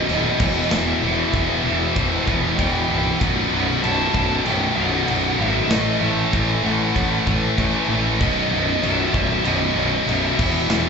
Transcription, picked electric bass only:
0.09 0.29 D#1 medium
0.40 0.61 E1 medium
0.72 0.92 E1 medium
1.03 1.23 E1 loud
1.33 1.54 E1 medium
1.64 1.85 E1 medium
1.97 2.17 E1 medium
2.28 2.48 E1 medium
2.59 2.79 E1 medium
2.90 3.10 C1 medium
3.21 3.42 B0 medium
3.52 3.72 B0 loud
3.83 4.04 B0 medium
4.15 4.35 B0 loud
4.46 4.66 B0 medium
4.78 4.98 B0 medium
5.08 5.29 B0 medium
5.39 5.60 G#1 medium
5.69 5.90 A1 medium
6.01 6.22 A1 medium
6.34 6.54 A1 medium
6.63 6.84 A1 medium
6.96 7.16 A1 medium
7.27 7.47 A1 medium
7.58 7.78 A1 medium
7.89 8.20 A1 medium
8.20 8.41 B0 medium
8.51 8.72 B0 loud
8.83 9.03 B0 medium
9.14 9.34 B0 medium
9.45 9.65 B0 medium
9.76 9.96 B0 loud
10.06 10.27 B0 loud
10.39 10.59 E1 medium
10.69 10.89 E1 loud

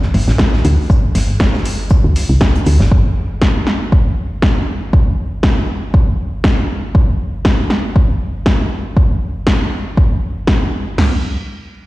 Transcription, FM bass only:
0.14 0.25 G1 loud
0.28 0.61 A1 medium
0.65 0.76 D2 loud
1.15 1.75 G1 medium
2.04 2.14 D2 medium
2.29 2.39 C2 medium
2.66 2.77 D2 medium
2.80 2.90 G1 medium

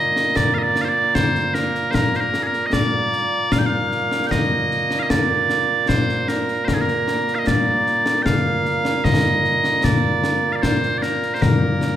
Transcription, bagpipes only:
0.00 11.96 A#2 medium
0.00 11.96 A#3 medium
0.00 0.36 D#5 loud
0.36 0.54 D5 loud
0.54 0.58 F5 medium
0.58 0.63 D#5 medium
0.63 0.81 D5 loud
0.81 0.89 C5 medium
0.81 0.85 F5 medium
0.89 1.15 D5 loud
1.15 1.54 C5 medium
1.54 1.91 A#4 medium
1.91 2.16 A#4 medium
1.91 1.95 C5 medium
2.16 2.20 C5 medium
2.20 2.43 A#4 medium
2.43 2.47 G#4 medium
2.43 2.66 A#4 medium
2.66 2.73 D#5 medium
2.73 3.52 D5 loud
3.52 3.59 F5 loud
3.59 3.66 G5 medium
3.66 4.27 F5 medium
4.27 4.31 G5 loud
4.31 5.00 D#5 loud
5.00 5.10 D#5 medium
5.00 5.03 F5 medium
5.10 5.88 D5 loud
5.88 6.28 C5 medium
6.28 6.65 A#4 medium
6.65 6.74 A#4 medium
6.65 6.68 C5 medium
6.74 6.81 G#4 medium
6.81 7.35 A#4 medium
7.35 7.39 F5 medium
7.39 7.47 D#5 medium
7.47 8.22 D5 loud
8.22 9.04 F5 medium
8.22 8.26 G5 medium
9.04 9.84 D#5 loud
9.84 10.52 D5 medium
10.52 10.62 D5 medium
10.52 10.56 F5 medium
10.62 10.98 C5 medium
10.98 11.02 D5 medium
11.02 11.34 A#4 medium
11.34 11.42 C5 medium
11.42 11.96 A#4 medium

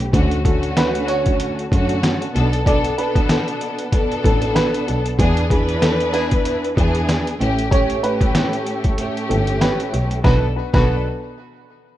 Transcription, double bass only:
0.14 1.68 D2 loud
1.72 2.09 F#2 medium
2.35 2.83 B1 loud
4.25 4.48 A1 loud
4.88 5.01 B1 medium
5.19 6.73 E2 loud
6.77 7.15 E2 loud
7.41 7.88 A1 medium
9.30 9.54 G1 loud
9.93 10.07 B1 loud
10.25 10.44 B1 loud
10.74 11.03 B1 loud

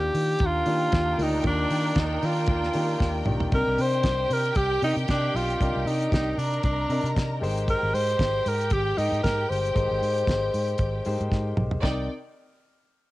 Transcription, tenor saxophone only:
0.00 0.47 G4 loud
0.46 1.24 F4 loud
1.22 1.46 D#4 medium
1.47 2.01 D4 medium
1.99 2.27 D#4 medium
2.25 3.28 F4 medium
3.54 3.82 A#4 loud
3.81 4.34 C5 loud
4.33 4.58 A#4 loud
4.56 4.82 G4 loud
4.84 4.95 D#4 loud
5.10 5.37 D4 loud
5.36 5.88 F4 medium
5.87 6.12 D#4 medium
6.14 6.40 D#4 medium
6.39 6.64 D4 medium
6.64 7.12 D4 medium
7.70 7.96 A#4 loud
7.94 8.50 C5 loud
8.48 8.74 A#4 loud
8.72 8.99 G4 loud
8.98 9.22 D#4 medium
9.23 9.51 A#4 loud
9.49 11.31 C5 loud

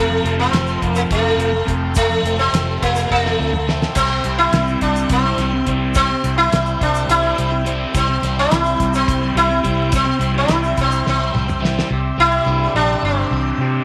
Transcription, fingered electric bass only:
0.00 0.19 F1 medium
0.24 0.48 F1 medium
0.52 0.76 F1 medium
0.82 1.05 F1 medium
1.11 1.34 F1 medium
1.36 1.61 F1 medium
1.68 2.14 F1 medium
2.23 2.47 F1 medium
2.53 2.76 F1 medium
2.82 3.05 F1 medium
3.11 3.34 F1 medium
3.39 3.85 D2 medium
3.96 4.19 C2 medium
4.25 4.48 C2 medium
4.53 4.76 C2 medium
4.81 5.04 C2 medium
5.10 5.33 C2 medium
5.37 5.61 C2 medium
5.67 6.13 C2 medium
6.24 6.47 C2 medium
6.53 6.75 C2 medium
6.81 7.04 C2 medium
7.08 7.32 C2 medium
7.38 7.84 C2 medium
7.94 8.17 C2 medium
8.23 8.46 C2 medium
8.52 8.75 C2 medium
8.80 9.03 C2 medium
9.08 9.31 C2 medium
9.35 9.59 C2 medium
9.65 10.11 C2 medium
10.20 10.43 C2 medium
10.49 10.72 C2 medium
10.78 11.01 C2 medium
11.07 11.30 C2 medium
11.35 11.81 C2 medium
11.91 12.10 C2 medium
12.18 12.38 C2 medium
12.46 12.66 C2 medium
12.75 12.95 A#1 medium
13.03 13.23 G1 medium
13.31 13.51 C2 medium
13.58 13.79 C3 medium

